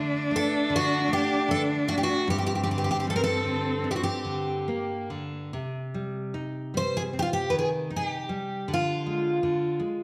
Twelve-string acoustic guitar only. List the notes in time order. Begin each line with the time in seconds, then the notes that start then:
0.36 A4
0.76 F#4
1.13 G4
1.51 A4
1.89 F#4
1.98 G4
2.03 F#4
2.30 G4
2.38 G4
2.47 G4
2.55 G4
2.63 G4
2.71 G4
2.78 G4
2.84 G4
2.91 G4
3.00 G4
3.10 A4
3.16 A#4
3.24 A4
3.91 G4
3.96 F#4
4.04 G4
6.77 C5
6.97 G#4
7.19 F4 G4
7.33 G4
7.50 B4
7.59 G#4
7.96 G4
8.74 F4